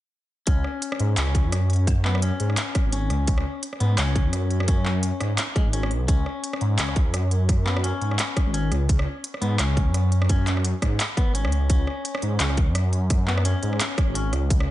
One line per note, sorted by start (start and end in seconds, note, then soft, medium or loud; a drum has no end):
0.47 0.63 C#2 loud
0.47 1.16 C#4 medium
0.47 kick loud
0.47 closed hi-hat medium
0.64 cross-stick medium
0.82 closed hi-hat medium
0.92 cross-stick medium
1.00 1.16 G#2 medium
1.00 closed hi-hat soft
1.17 1.46 C#2 medium
1.17 1.86 C#4 medium
1.17 clap loud
1.17 closed hi-hat medium
1.27 cross-stick medium
1.35 kick loud
1.35 closed hi-hat soft
1.44 2.31 F#2 medium
1.52 cross-stick medium
1.52 closed hi-hat medium
1.70 closed hi-hat soft
1.73 closed hi-hat soft
1.76 closed hi-hat soft
1.87 kick loud
1.87 cross-stick medium
1.87 closed hi-hat medium
2.05 2.21 B3 medium
2.05 clap medium
2.15 cross-stick medium
2.22 2.91 C#4 medium
2.22 closed hi-hat medium
2.40 2.56 G#2 medium
2.40 closed hi-hat soft
2.50 cross-stick medium
2.57 clap loud
2.57 closed hi-hat medium
2.75 kick loud
2.75 cross-stick medium
2.75 closed hi-hat soft
2.85 3.09 G#1 medium
2.92 3.61 C#4 medium
2.92 closed hi-hat medium
3.10 3.27 C#2 medium
3.10 cross-stick medium
3.10 closed hi-hat soft
3.27 3.44 C#2 loud
3.27 kick loud
3.27 closed hi-hat medium
3.38 cross-stick medium
3.63 closed hi-hat medium
3.73 cross-stick soft
3.80 3.97 G#2 medium
3.80 3.96 B3 medium
3.80 closed hi-hat soft
3.98 4.27 C#2 medium
3.98 4.67 C#4 medium
3.98 cross-stick medium
3.98 clap loud
3.98 closed hi-hat medium
4.16 kick loud
4.16 closed hi-hat soft
4.25 5.12 F#2 medium
4.33 cross-stick soft
4.33 closed hi-hat medium
4.51 closed hi-hat soft
4.60 cross-stick medium
4.68 5.37 C#4 medium
4.68 kick loud
4.68 closed hi-hat medium
4.85 clap medium
5.03 closed hi-hat medium
5.21 5.37 G#2 medium
5.21 cross-stick medium
5.21 closed hi-hat soft
5.38 clap loud
5.38 closed hi-hat medium
5.56 5.67 G#3 medium
5.56 kick loud
5.56 cross-stick soft
5.56 closed hi-hat soft
5.66 5.93 G#1 medium
5.73 5.90 C#4 medium
5.73 closed hi-hat medium
5.83 cross-stick medium
5.91 6.07 B1 medium
5.91 closed hi-hat soft
6.08 6.25 C#2 loud
6.08 6.77 C#4 medium
6.08 kick loud
6.08 closed hi-hat medium
6.26 cross-stick soft
6.44 closed hi-hat medium
6.53 cross-stick medium
6.61 6.78 G#2 medium
6.61 closed hi-hat soft
6.78 7.08 C#2 medium
6.78 6.95 C#4 medium
6.78 clap loud
6.78 closed hi-hat medium
6.89 cross-stick soft
6.96 kick loud
6.96 closed hi-hat soft
7.06 7.93 F#2 medium
7.14 cross-stick medium
7.14 closed hi-hat medium
7.31 closed hi-hat soft
7.49 kick loud
7.49 cross-stick medium
7.49 closed hi-hat medium
7.66 7.82 B3 medium
7.66 clap medium
7.77 cross-stick medium
7.84 8.52 C#4 medium
7.84 closed hi-hat medium
8.01 8.18 G#2 medium
8.01 closed hi-hat soft
8.11 cross-stick medium
8.19 clap loud
8.19 closed hi-hat medium
8.37 kick loud
8.37 cross-stick medium
8.37 closed hi-hat soft
8.46 8.71 G#1 medium
8.54 8.71 C#4 medium
8.54 closed hi-hat medium
8.71 8.88 C#2 medium
8.71 cross-stick medium
8.71 closed hi-hat soft
8.89 9.06 C#2 medium
8.89 kick loud
8.89 closed hi-hat medium
8.99 cross-stick medium
9.24 closed hi-hat medium
9.34 cross-stick medium
9.41 9.58 G#2 medium
9.41 9.58 B3 medium
9.41 closed hi-hat soft
9.59 9.88 C#2 medium
9.59 10.28 C#4 medium
9.59 cross-stick medium
9.59 clap loud
9.59 closed hi-hat medium
9.77 kick loud
9.77 closed hi-hat soft
9.87 10.73 F#2 medium
9.94 cross-stick medium
9.94 closed hi-hat medium
10.12 closed hi-hat soft
10.22 cross-stick medium
10.29 10.46 C#4 medium
10.29 kick loud
10.29 closed hi-hat medium
10.47 clap medium
10.47 closed hi-hat soft
10.57 cross-stick medium
10.65 closed hi-hat medium
10.82 10.99 G#2 medium
10.82 kick medium
10.82 cross-stick medium
10.82 closed hi-hat soft
11.00 clap loud
11.00 closed hi-hat medium
11.17 11.33 B3 medium
11.17 kick loud
11.17 cross-stick medium
11.17 closed hi-hat soft
11.27 11.46 G#1 medium
11.35 11.68 C#4 medium
11.35 closed hi-hat medium
11.44 11.54 D#2 loud
11.44 cross-stick medium
11.52 11.69 C#2 medium
11.52 closed hi-hat soft
11.70 11.86 C#2 loud
11.70 12.38 C#4 medium
11.70 kick loud
11.70 closed hi-hat medium
11.87 cross-stick medium
12.05 closed hi-hat medium
12.15 cross-stick medium
12.22 12.39 G#2 medium
12.22 closed hi-hat soft
12.40 12.69 C#2 medium
12.40 12.57 C#4 medium
12.40 clap loud
12.40 closed hi-hat medium
12.50 cross-stick medium
12.57 kick loud
12.57 closed hi-hat soft
12.68 13.54 F#2 medium
12.75 cross-stick medium
12.75 closed hi-hat medium
12.93 closed hi-hat soft
13.10 kick loud
13.10 cross-stick medium
13.10 closed hi-hat medium
13.28 13.44 B3 medium
13.28 clap medium
13.38 cross-stick medium
13.45 14.14 C#4 medium
13.45 closed hi-hat medium
13.63 13.79 G#2 medium
13.63 closed hi-hat soft
13.73 cross-stick medium
13.80 clap loud
13.80 closed hi-hat medium
13.98 kick loud
13.98 cross-stick medium
13.98 closed hi-hat soft
14.08 14.32 G#1 medium
14.15 14.32 C#4 medium
14.15 closed hi-hat medium
14.33 14.49 C#2 medium
14.33 cross-stick medium
14.33 closed hi-hat soft
14.50 14.67 C#2 loud
14.50 kick loud
14.50 closed hi-hat medium
14.60 cross-stick medium